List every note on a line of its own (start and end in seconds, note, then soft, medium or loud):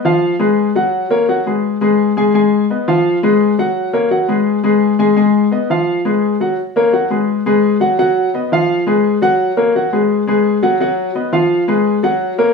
0.05 0.34 F3 medium
0.05 0.34 F4 medium
0.05 0.34 F5 medium
0.39 0.69 G#3 medium
0.39 0.69 G#4 medium
0.39 0.69 B4 medium
0.76 1.04 F#3 medium
0.76 1.05 F#4 medium
0.76 1.05 F#5 medium
1.10 1.25 A#3 medium
1.10 1.25 A#4 medium
1.10 1.25 C#5 medium
1.29 1.43 F#3 medium
1.29 1.43 F#4 medium
1.29 1.43 F#5 medium
1.46 1.75 G#3 medium
1.46 1.75 G#4 medium
1.46 1.76 B4 medium
1.81 2.10 G#3 medium
1.81 2.10 G#4 medium
1.81 2.11 B4 medium
2.17 2.31 G#3 medium
2.17 2.31 G#4 medium
2.17 2.32 G#5 medium
2.34 2.63 G#3 medium
2.34 2.64 G#4 medium
2.34 2.64 G#5 medium
2.70 2.85 B3 medium
2.70 2.85 B4 medium
2.70 2.85 D#5 medium
2.88 3.17 F3 medium
2.88 3.17 F4 medium
2.88 3.17 F5 medium
3.23 3.52 G#3 medium
3.23 3.52 G#4 medium
3.23 3.52 B4 medium
3.59 3.87 F#3 medium
3.59 3.88 F#4 medium
3.59 3.88 F#5 medium
3.93 4.08 A#3 medium
3.93 4.08 A#4 medium
3.93 4.08 C#5 medium
4.11 4.25 F#3 medium
4.11 4.25 F#4 medium
4.11 4.26 F#5 medium
4.28 4.57 G#3 medium
4.28 4.58 G#4 medium
4.28 4.58 B4 medium
4.64 4.93 G#3 medium
4.64 4.93 G#4 medium
4.64 4.93 B4 medium
4.99 5.14 G#3 medium
4.99 5.14 G#4 medium
4.99 5.14 G#5 medium
5.16 5.46 G#3 medium
5.16 5.46 G#4 medium
5.16 5.46 G#5 medium
5.51 5.66 B3 medium
5.51 5.66 B4 medium
5.51 5.67 D#5 medium
5.70 5.99 F3 medium
5.70 5.99 F4 medium
5.70 5.99 F5 medium
6.05 6.34 G#3 medium
6.05 6.34 G#4 medium
6.05 6.34 B4 medium
6.40 6.55 F#3 medium
6.40 6.55 F#4 medium
6.40 6.55 F#5 medium
6.76 6.90 A#3 medium
6.76 6.91 A#4 medium
6.76 6.91 C#5 medium
6.93 7.08 F#3 medium
6.93 7.08 F#4 medium
6.93 7.08 F#5 medium
7.10 7.39 G#3 medium
7.10 7.40 G#4 medium
7.10 7.40 B4 medium
7.46 7.75 G#3 medium
7.46 7.75 G#4 medium
7.46 7.75 B4 medium
7.80 7.95 F#3 medium
7.80 7.96 F#4 medium
7.80 7.96 F#5 medium
7.99 8.28 F#3 medium
7.99 8.28 F#4 medium
7.99 8.28 F#5 loud
8.34 8.48 B3 medium
8.34 8.49 B4 medium
8.34 8.49 D#5 medium
8.52 8.81 F3 medium
8.52 8.81 F4 medium
8.52 8.81 F5 medium
8.87 9.16 G#3 medium
8.87 9.16 G#4 medium
8.87 9.16 B4 medium
9.22 9.51 F#3 medium
9.22 9.51 F#4 medium
9.22 9.51 F#5 loud
9.57 9.72 A#3 medium
9.57 9.72 A#4 medium
9.57 9.72 C#5 medium
9.75 9.90 F#3 medium
9.75 9.90 F#4 medium
9.75 9.90 F#5 medium
9.93 10.21 G#3 medium
9.93 10.22 G#4 medium
9.93 10.22 B4 medium
10.27 10.56 G#3 medium
10.27 10.57 G#4 medium
10.27 10.57 B4 medium
10.63 10.77 F#3 medium
10.63 10.77 F#4 medium
10.63 10.77 F#5 medium
10.80 11.09 F#3 medium
10.80 11.09 F#4 medium
10.80 11.10 F#5 medium
11.15 11.30 B3 medium
11.15 11.30 B4 medium
11.15 11.30 D#5 medium
11.32 11.61 F3 medium
11.32 11.62 F4 medium
11.32 11.62 F5 medium
11.68 11.97 G#3 medium
11.68 11.97 G#4 medium
11.68 11.97 B4 medium
12.03 12.32 F#3 medium
12.03 12.32 F#4 medium
12.03 12.32 F#5 medium
12.38 12.53 A#3 medium
12.38 12.53 A#4 medium
12.38 12.53 C#5 medium